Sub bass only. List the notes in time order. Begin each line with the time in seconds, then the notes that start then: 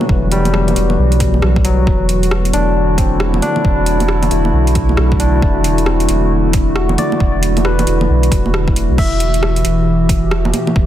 0.09 E1
0.76 E1
0.98 B1
1.42 B1
1.87 E1
2.54 E1
3.65 E1
4.31 E1
4.53 B1
4.98 B1
5.42 E1
6.09 E1
7.20 E1
7.87 E1
8.09 B1
8.31 E1
8.90 B1
8.98 E1
9.65 E1
10.76 E1